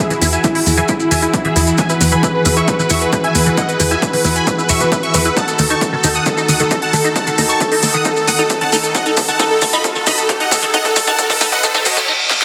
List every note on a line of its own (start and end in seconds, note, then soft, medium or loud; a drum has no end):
0.00 5.33 E3 medium
0.00 5.33 E4 medium
0.00 12.04 F#4 medium
0.00 5.32 G#4 medium
0.10 0.13 E3 medium
0.10 0.20 E4 medium
0.10 closed hi-hat soft
0.10 maracas soft
0.22 0.38 E2 loud
0.22 0.31 E4 medium
0.22 0.26 E4 medium
0.22 0.31 E4 medium
0.22 open hi-hat loud
0.22 maracas loud
0.33 0.42 E5 medium
0.33 0.42 G#5 medium
0.33 closed hi-hat soft
0.33 maracas soft
0.44 0.47 E3 medium
0.44 0.53 E4 medium
0.44 kick loud
0.44 closed hi-hat medium
0.44 maracas medium
0.55 0.65 E4 medium
0.55 0.59 E4 medium
0.55 open hi-hat medium
0.66 0.82 E2 loud
0.66 0.76 E4 medium
0.66 open hi-hat loud
0.66 maracas medium
0.77 0.80 E3 medium
0.77 0.87 E5 medium
0.77 0.87 G#5 medium
0.77 closed hi-hat medium
0.77 maracas soft
0.88 0.98 E4 medium
0.88 0.93 E4 medium
0.88 kick loud
0.88 closed hi-hat medium
0.88 maracas medium
1.00 1.09 E4 medium
1.00 maracas soft
1.11 1.27 E2 medium
1.11 1.14 E3 medium
1.11 1.20 E5 medium
1.11 1.21 G#5 medium
1.11 1.21 G#5 loud
1.11 open hi-hat loud
1.11 maracas medium
1.22 1.32 E4 medium
1.22 1.27 E4 medium
1.22 closed hi-hat medium
1.22 maracas soft
1.34 1.43 E4 medium
1.34 kick loud
1.34 closed hi-hat medium
1.34 maracas soft
1.45 1.47 E3 medium
1.45 1.54 G#4 medium
1.45 1.54 E5 medium
1.45 closed hi-hat soft
1.56 1.72 E2 loud
1.56 1.60 E4 medium
1.56 1.65 E4 medium
1.56 open hi-hat loud
1.56 maracas loud
1.67 1.77 E4 medium
1.67 closed hi-hat medium
1.67 maracas soft
1.78 1.81 E3 medium
1.78 1.88 E5 medium
1.78 1.88 G#5 loud
1.78 kick loud
1.78 closed hi-hat medium
1.78 maracas medium
1.89 1.94 E4 medium
1.89 1.99 B4 medium
1.89 closed hi-hat soft
1.89 maracas soft
2.01 2.17 E2 loud
2.01 2.10 B4 medium
2.01 open hi-hat loud
2.01 maracas loud
2.12 2.14 E3 medium
2.12 2.21 G#5 medium
2.12 2.21 B5 medium
2.12 closed hi-hat soft
2.12 maracas soft
2.23 2.27 E4 medium
2.23 2.33 B4 medium
2.23 kick loud
2.23 closed hi-hat medium
2.23 maracas medium
2.34 2.44 B4 medium
2.45 2.61 E2 loud
2.45 2.48 E3 medium
2.45 2.55 B4 medium
2.45 open hi-hat loud
2.45 maracas medium
2.56 2.61 E4 medium
2.56 2.66 E5 medium
2.56 2.66 C#6 medium
2.56 closed hi-hat soft
2.56 maracas soft
2.68 2.77 B4 medium
2.68 kick loud
2.68 closed hi-hat medium
2.68 maracas medium
2.79 2.82 E3 medium
2.79 2.89 B4 medium
2.79 maracas soft
2.90 3.06 E2 medium
2.90 2.94 E4 medium
2.90 3.00 E5 medium
2.90 3.00 C#6 medium
2.90 3.00 C#6 loud
2.90 open hi-hat loud
2.90 maracas loud
3.01 3.11 B4 medium
3.01 closed hi-hat medium
3.01 maracas soft
3.12 3.15 E3 medium
3.12 3.22 B4 medium
3.12 kick loud
3.12 closed hi-hat medium
3.12 maracas medium
3.24 3.28 E4 medium
3.24 3.33 E5 medium
3.24 3.33 G#5 medium
3.24 closed hi-hat soft
3.35 3.51 E2 loud
3.35 3.44 B4 medium
3.35 3.45 B4 medium
3.35 open hi-hat loud
3.35 maracas loud
3.46 3.49 E3 medium
3.46 3.56 B4 medium
3.46 closed hi-hat medium
3.46 maracas soft
3.57 3.62 E4 medium
3.57 3.67 D#5 medium
3.57 3.67 F#5 loud
3.57 kick loud
3.57 closed hi-hat medium
3.57 maracas medium
3.69 3.78 B4 medium
3.69 closed hi-hat soft
3.69 maracas soft
3.80 3.96 E2 loud
3.80 3.82 E3 medium
3.80 3.89 B4 medium
3.80 open hi-hat loud
3.80 maracas loud
3.91 3.95 E4 medium
3.91 4.00 E5 medium
3.91 4.00 G#5 medium
3.91 4.01 G#5 medium
3.91 closed hi-hat soft
3.91 maracas soft
4.02 4.12 B4 medium
4.02 kick loud
4.02 closed hi-hat medium
4.02 maracas medium
4.13 4.16 E3 medium
4.13 4.23 B4 medium
4.13 open hi-hat medium
4.25 4.40 E2 loud
4.25 4.29 E4 medium
4.25 4.34 B4 medium
4.25 open hi-hat loud
4.25 maracas medium
4.36 4.45 G#5 medium
4.36 4.45 B5 loud
4.36 closed hi-hat medium
4.36 maracas soft
4.47 4.50 E3 medium
4.47 4.56 B4 medium
4.47 4.57 B4 medium
4.47 kick loud
4.47 closed hi-hat medium
4.47 maracas medium
4.58 4.62 E4 medium
4.58 4.68 B4 medium
4.58 maracas soft
4.69 4.85 E1 medium
4.69 4.79 E5 medium
4.69 4.79 C#6 medium
4.69 4.79 C#6 loud
4.69 open hi-hat loud
4.69 maracas loud
4.80 4.83 E3 medium
4.80 4.90 B4 medium
4.80 closed hi-hat soft
4.80 maracas soft
4.92 4.96 E4 medium
4.92 5.01 B4 medium
4.92 kick loud
4.92 closed hi-hat medium
4.92 maracas medium
5.03 5.12 E5 medium
5.03 5.12 C#6 medium
5.03 closed hi-hat soft
5.14 5.30 E2 loud
5.14 5.17 E3 medium
5.14 5.24 B4 medium
5.14 open hi-hat loud
5.14 maracas medium
5.25 5.30 E4 medium
5.25 5.35 B4 medium
5.25 closed hi-hat soft
5.25 maracas soft
5.36 12.04 D#3 medium
5.36 12.04 D#4 medium
5.36 5.41 D#4 medium
5.36 12.04 A4 medium
5.36 5.46 F#5 medium
5.36 5.46 A5 loud
5.36 kick loud
5.36 closed hi-hat medium
5.36 riser medium
5.36 maracas medium
5.48 5.57 A4 medium
5.48 closed hi-hat soft
5.48 maracas soft
5.59 5.75 D#2 loud
5.59 5.61 D#3 medium
5.59 5.68 A4 medium
5.59 open hi-hat loud
5.59 maracas loud
5.70 5.74 D#4 medium
5.70 5.80 A5 medium
5.70 5.80 C#6 loud
5.70 5.80 C#6 medium
5.70 closed hi-hat soft
5.70 maracas soft
5.81 5.91 A4 medium
5.81 kick loud
5.81 closed hi-hat medium
5.81 maracas soft
5.93 5.95 D#3 medium
5.93 6.02 A4 medium
6.04 6.20 D#2 loud
6.04 6.08 D#4 medium
6.04 6.13 A4 medium
6.04 open hi-hat loud
6.04 maracas loud
6.15 6.24 F#5 medium
6.15 6.24 D#6 loud
6.15 closed hi-hat medium
6.15 maracas soft
6.26 6.29 D#3 medium
6.26 6.36 A4 medium
6.26 kick loud
6.26 closed hi-hat medium
6.26 maracas medium
6.37 6.41 D#4 medium
6.37 6.47 A4 medium
6.37 maracas soft
6.48 6.64 D#2 medium
6.48 6.58 F#5 medium
6.48 6.58 D#6 loud
6.48 open hi-hat loud
6.48 maracas medium
6.59 6.62 D#3 medium
6.59 6.69 A4 medium
6.59 closed hi-hat soft
6.59 maracas soft
6.71 6.75 D#4 medium
6.71 6.80 A4 medium
6.71 kick loud
6.71 closed hi-hat medium
6.71 maracas medium
6.82 6.92 F#5 medium
6.82 6.91 A5 loud
6.82 6.92 A5 medium
6.82 closed hi-hat soft
6.93 7.09 D#2 loud
6.93 6.96 D#3 medium
6.93 7.03 A4 medium
6.93 open hi-hat loud
6.93 maracas loud
7.04 7.09 D#4 medium
7.04 7.14 A4 medium
7.04 closed hi-hat soft
7.04 maracas soft
7.16 7.25 F#5 medium
7.16 7.25 A5 loud
7.16 kick loud
7.16 closed hi-hat medium
7.16 maracas medium
7.27 7.29 D#3 medium
7.27 7.36 A4 medium
7.27 closed hi-hat soft
7.27 maracas soft
7.38 7.54 D#2 loud
7.38 7.42 D#4 medium
7.38 7.47 A4 medium
7.38 open hi-hat loud
7.38 maracas medium
7.49 7.59 A5 medium
7.49 7.59 C#6 medium
7.49 7.59 C#6 loud
7.49 closed hi-hat medium
7.49 maracas soft
7.60 7.63 D#3 medium
7.60 7.70 A4 medium
7.60 kick loud
7.60 closed hi-hat medium
7.60 maracas medium
7.72 7.76 D#4 medium
7.72 7.81 A4 medium
7.72 open hi-hat medium
7.82 7.99 D#2 loud
7.82 7.92 A4 medium
7.82 open hi-hat loud
7.82 maracas loud
7.94 7.97 D#3 medium
7.94 8.04 F#5 medium
7.94 8.03 D#6 loud
7.94 closed hi-hat medium
7.94 maracas soft
8.05 8.09 D#4 medium
8.05 8.15 A4 medium
8.05 kick loud
8.05 closed hi-hat medium
8.05 maracas medium
8.16 8.26 A4 medium
8.16 maracas soft
8.28 8.43 D#2 medium
8.28 8.30 D#3 medium
8.28 8.37 F#5 medium
8.28 8.37 D#6 loud
8.28 8.37 D#6 medium
8.28 open hi-hat loud
8.28 maracas medium
8.39 8.43 D#4 medium
8.39 8.48 A4 medium
8.39 closed hi-hat medium
8.39 maracas soft
8.50 8.59 A4 medium
8.50 kick loud
8.50 closed hi-hat medium
8.50 maracas medium
8.61 8.64 D#3 medium
8.61 8.71 F#5 medium
8.61 8.71 A5 medium
8.61 closed hi-hat soft
8.72 8.88 D#2 loud
8.72 8.77 D#4 medium
8.72 8.82 A4 medium
8.72 open hi-hat loud
8.72 maracas loud
8.83 8.93 A4 medium
8.83 closed hi-hat medium
8.83 maracas soft
8.95 8.97 D#3 medium
8.95 9.04 D#5 medium
8.95 9.04 F#5 loud
8.95 kick loud
8.95 closed hi-hat medium
8.95 maracas soft
9.06 9.10 D#4 medium
9.06 9.15 A4 medium
9.06 closed hi-hat soft
9.06 maracas soft
9.17 9.33 D#2 loud
9.17 9.26 A4 medium
9.17 9.27 A4 medium
9.17 kick loud
9.17 open hi-hat loud
9.17 maracas medium
9.28 9.31 D#3 medium
9.28 9.38 F#5 medium
9.28 9.38 A5 medium
9.28 closed hi-hat medium
9.28 maracas soft
9.39 9.44 D#4 medium
9.39 9.49 A4 medium
9.39 kick loud
9.39 closed hi-hat medium
9.39 maracas medium
9.51 9.60 A4 medium
9.61 9.78 D#2 loud
9.61 9.64 D#3 medium
9.61 9.71 A4 medium
9.61 kick loud
9.61 open hi-hat loud
9.61 maracas loud
9.73 9.77 D#4 medium
9.73 9.83 D#5 medium
9.73 9.82 B5 loud
9.73 9.83 B5 medium
9.73 closed hi-hat medium
9.73 maracas soft
9.84 9.94 A4 medium
9.84 kick loud
9.84 closed hi-hat medium
9.84 maracas medium
9.95 9.98 D#3 medium
9.95 10.05 A4 medium
9.95 maracas soft
10.06 10.23 D#2 medium
10.06 10.11 D#4 medium
10.06 10.16 D#5 medium
10.06 10.16 B5 loud
10.06 10.16 B5 medium
10.06 kick loud
10.06 open hi-hat loud
10.06 maracas medium
10.18 10.27 A4 medium
10.18 closed hi-hat medium
10.18 maracas soft
10.29 10.32 D#3 medium
10.29 10.38 A4 medium
10.29 kick loud
10.29 closed hi-hat medium
10.29 maracas soft
10.40 10.44 D#4 medium
10.40 10.50 D#5 medium
10.40 10.50 F#5 medium
10.40 10.50 F#5 loud
10.40 closed hi-hat soft
10.51 10.67 D#2 loud
10.51 10.61 A4 medium
10.51 kick loud
10.51 open hi-hat loud
10.51 maracas medium
10.62 10.65 D#3 medium
10.62 10.72 A4 medium
10.62 closed hi-hat medium
10.62 maracas soft
10.74 10.78 D#4 medium
10.74 10.83 D#5 medium
10.74 10.83 F#5 loud
10.74 kick loud
10.74 closed hi-hat medium
10.74 maracas medium
10.85 10.94 A4 medium
10.85 kick medium
10.85 closed hi-hat soft
10.85 maracas soft
10.96 11.12 D#2 loud
10.96 10.99 D#3 medium
10.96 11.06 A4 medium
10.96 kick loud
10.96 open hi-hat loud
10.96 maracas medium
11.07 11.12 D#4 medium
11.07 11.17 F#5 medium
11.07 11.17 A5 medium
11.07 kick medium
11.07 closed hi-hat medium
11.07 maracas soft
11.18 11.28 A4 medium
11.18 kick loud
11.18 closed hi-hat medium
11.18 maracas medium
11.30 11.32 D#3 medium
11.30 11.39 A4 medium
11.30 kick loud
11.30 open hi-hat medium
11.30 maracas soft
11.41 11.57 D#2 loud
11.41 11.45 D#4 medium
11.41 11.50 A4 medium
11.41 kick loud
11.41 open hi-hat loud
11.41 maracas medium
11.52 11.62 D#5 medium
11.52 11.62 F#5 loud
11.52 kick medium
11.52 closed hi-hat medium
11.52 maracas soft
11.63 11.66 D#3 medium
11.63 11.73 A4 medium
11.63 kick loud
11.63 closed hi-hat medium
11.63 reverse cymbal medium
11.63 maracas soft
11.74 11.79 D#4 medium
11.74 11.84 A4 medium
11.74 kick medium
11.74 maracas soft
11.85 12.02 D#2 medium
11.85 11.95 F#4 medium
11.85 11.95 D#5 medium
11.85 11.95 D#5 loud
11.85 kick loud
11.85 open hi-hat loud
11.85 maracas medium
11.97 11.99 D#3 medium
11.97 12.06 A4 medium
11.97 kick loud
11.97 closed hi-hat medium
11.97 maracas soft
12.08 12.12 D#4 medium
12.31 12.33 D#3 medium
12.31 snare medium